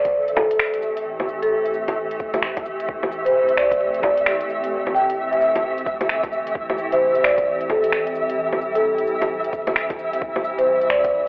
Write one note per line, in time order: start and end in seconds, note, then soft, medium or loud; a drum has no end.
0.00 0.59 A1 loud
0.00 11.28 E3 medium
0.00 6.51 A3 medium
0.00 11.28 C4 medium
0.00 10.17 G4 medium
0.00 0.35 D5 medium
0.00 11.28 E5 medium
0.00 impact medium
0.05 kick loud
0.05 closed hi-hat medium
0.28 closed hi-hat soft
0.36 0.74 A4 medium
0.36 kick loud
0.36 low bongo medium
0.36 cabasa medium
0.51 closed hi-hat medium
0.59 finger snap loud
0.74 closed hi-hat soft
0.82 cabasa medium
0.97 closed hi-hat medium
1.06 2.19 A1 loud
1.20 low bongo medium
1.29 cabasa medium
1.42 2.05 A4 medium
1.42 closed hi-hat medium
1.66 closed hi-hat soft
1.74 cabasa medium
1.88 closed hi-hat medium
1.88 low bongo medium
2.11 closed hi-hat soft
2.20 2.67 A1 medium
2.20 kick loud
2.20 cabasa medium
2.34 closed hi-hat medium
2.34 low bongo medium
2.43 finger snap loud
2.57 kick loud
2.57 closed hi-hat soft
2.57 low bongo soft
2.66 2.87 E1 medium
2.66 cabasa medium
2.80 closed hi-hat medium
2.89 4.25 A1 medium
2.89 kick loud
3.03 low bongo medium
3.12 cabasa medium
3.25 3.49 C5 medium
3.25 closed hi-hat medium
3.49 closed hi-hat soft
3.57 4.01 D5 medium
3.57 finger snap loud
3.57 cabasa medium
3.71 kick loud
3.71 closed hi-hat medium
3.94 closed hi-hat soft
4.02 4.27 D5 medium
4.02 kick loud
4.02 low bongo medium
4.02 cabasa medium
4.17 closed hi-hat medium
4.26 finger snap loud
4.41 closed hi-hat soft
4.50 cabasa medium
4.64 closed hi-hat medium
4.72 5.85 A1 loud
4.87 low bongo soft
4.94 5.29 G5 medium
4.94 cabasa medium
5.10 closed hi-hat medium
5.31 5.37 E5 medium
5.31 closed hi-hat soft
5.41 5.50 E5 medium
5.41 cabasa medium
5.56 closed hi-hat medium
5.56 low bongo medium
5.78 closed hi-hat soft
5.86 6.08 B1 medium
5.86 kick loud
5.86 cabasa medium
6.01 closed hi-hat medium
6.01 low bongo medium
6.09 6.54 G1 loud
6.09 finger snap loud
6.23 kick loud
6.23 closed hi-hat soft
6.23 low bongo soft
6.33 cabasa medium
6.47 closed hi-hat medium
6.55 7.91 A1 loud
6.55 11.28 G3 medium
6.55 kick loud
6.70 low bongo medium
6.78 cabasa medium
6.92 7.16 C5 medium
6.92 closed hi-hat medium
7.15 closed hi-hat soft
7.24 7.68 D5 medium
7.24 finger snap loud
7.24 cabasa medium
7.38 kick loud
7.38 closed hi-hat medium
7.61 closed hi-hat soft
7.70 8.07 A4 medium
7.70 kick loud
7.70 low bongo medium
7.70 cabasa medium
7.84 closed hi-hat medium
7.92 finger snap loud
8.07 closed hi-hat soft
8.15 cabasa medium
8.30 closed hi-hat medium
8.39 9.52 A1 loud
8.53 low bongo medium
8.61 cabasa medium
8.75 9.38 A4 medium
8.75 closed hi-hat medium
8.98 closed hi-hat soft
9.07 cabasa medium
9.22 closed hi-hat medium
9.22 low bongo medium
9.44 closed hi-hat soft
9.53 10.00 A1 medium
9.53 kick loud
9.53 cabasa medium
9.67 closed hi-hat medium
9.67 low bongo medium
9.76 finger snap medium
9.90 kick loud
9.90 closed hi-hat soft
9.90 low bongo soft
9.99 10.20 E1 medium
9.99 cabasa medium
10.13 closed hi-hat medium
10.21 11.28 A1 loud
10.21 11.28 A4 loud
10.21 kick loud
10.36 low bongo medium
10.44 cabasa medium
10.58 10.82 C5 medium
10.58 closed hi-hat medium
10.81 closed hi-hat soft
10.89 11.28 D5 medium
10.89 finger snap loud
10.89 cabasa medium
11.04 kick loud
11.04 closed hi-hat medium